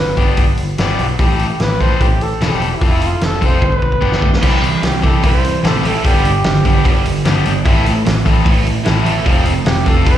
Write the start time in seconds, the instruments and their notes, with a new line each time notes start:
Already playing: picked electric bass G1, trumpet B4
0.17 picked electric bass G1, distorted electric guitar G3 B3 D4 G4, kick, open hi-hat
0.37 picked electric bass G1, kick, open hi-hat
0.57 picked electric bass G1, open hi-hat
0.78 picked electric bass G1, distorted electric guitar G3 B3 D4 G4, snare, open hi-hat
0.98 picked electric bass B1, open hi-hat
1.19 picked electric bass A1, distorted electric guitar C4 E4 A4, trumpet G4, kick, open hi-hat
1.39 open hi-hat
1.60 picked electric bass A1, trumpet B4, snare, open hi-hat
1.81 distorted electric guitar C4 E4 A4, trumpet C5, kick, open hi-hat
2.00 picked electric bass A1, trumpet G4, kick, open hi-hat
2.21 trumpet A4, open hi-hat
2.41 picked electric bass E1, distorted electric guitar C4 E4 A4, trumpet G4, snare, open hi-hat
2.62 open hi-hat
2.75 trumpet E4
2.81 picked electric bass F1, distorted electric guitar C4 F4 A4, trumpet E4, kick, open hi-hat
3.02 open hi-hat
3.06 trumpet F4
3.21 picked electric bass F1, trumpet A4, snare, open hi-hat
3.41 picked electric bass F1, distorted electric guitar C4 F4 A4, trumpet C5, kick, open hi-hat
3.62 picked electric bass G1, trumpet B4, kick
3.72 kick
3.82 picked electric bass G1, kick
3.92 kick
4.01 picked electric bass G1, distorted electric guitar B3 D4 G4, kick
4.12 snare
4.22 picked electric bass D2, kick
4.34 snare
4.42 picked electric bass C2, distorted electric guitar C3 E3 G3 C4 E4 G4, kick, crash
4.62 distorted electric guitar C3 E3, open hi-hat
4.82 picked electric bass C2, distorted electric guitar C3 E3, trumpet G4, snare, open hi-hat
5.02 distorted electric guitar C3 E3 C4 E4 G4, trumpet A4, kick, open hi-hat
5.22 picked electric bass C2, distorted electric guitar C3 E3 G3, trumpet C5, kick, open hi-hat
5.44 distorted electric guitar C3 E3, open hi-hat
5.63 picked electric bass A1, distorted electric guitar C3 E3 C4 E4 G4, trumpet A4, snare, open hi-hat
5.83 distorted electric guitar C3 E3 G3, trumpet A4, open hi-hat
6.03 picked electric bass G1, distorted electric guitar G2 D3 G3 B3 D4 G4, trumpet G4, kick, open hi-hat
6.23 distorted electric guitar G2 D3, open hi-hat
6.44 picked electric bass G1, distorted electric guitar G2 D3, snare, open hi-hat
6.65 picked electric bass G1, distorted electric guitar G2 D3 G3 B3 D4 G4, kick, open hi-hat
6.84 picked electric bass G1, distorted electric guitar G2 D3 G3, kick, open hi-hat
7.05 picked electric bass G1, distorted electric guitar G2 D3, open hi-hat
7.25 picked electric bass G1, distorted electric guitar G2 D3 G3 B3 D4 G4, snare, open hi-hat
7.45 picked electric bass G1, distorted electric guitar G2 D3, open hi-hat
7.65 picked electric bass A1, distorted electric guitar A2 E3 A3 C4 E4 A4, kick, open hi-hat
7.86 distorted electric guitar A2 E3, open hi-hat
8.05 picked electric bass A1, distorted electric guitar A2 E3, snare, open hi-hat
8.25 distorted electric guitar A2 E3 C4 E4 A4, kick, open hi-hat
8.44 picked electric bass A1, distorted electric guitar A2 E3 A3, kick, open hi-hat
8.64 distorted electric guitar A2 E3, open hi-hat
8.84 picked electric bass A1, distorted electric guitar A2 E3 C4 E4 A4, snare, open hi-hat
9.04 distorted electric guitar A2 E3 A3, open hi-hat
9.25 picked electric bass F1, distorted electric guitar F2 C3 F3 C4 F4 A4, kick, open hi-hat
9.44 distorted electric guitar F2 C3, open hi-hat
9.65 picked electric bass F1, distorted electric guitar F2 C3, trumpet G4, snare, open hi-hat
9.84 picked electric bass F1, distorted electric guitar F2 C3 F3 C4 F4 A4, kick, open hi-hat
9.88 trumpet A4
10.05 picked electric bass F1, distorted electric guitar F2 C3 F3, trumpet C5, kick, open hi-hat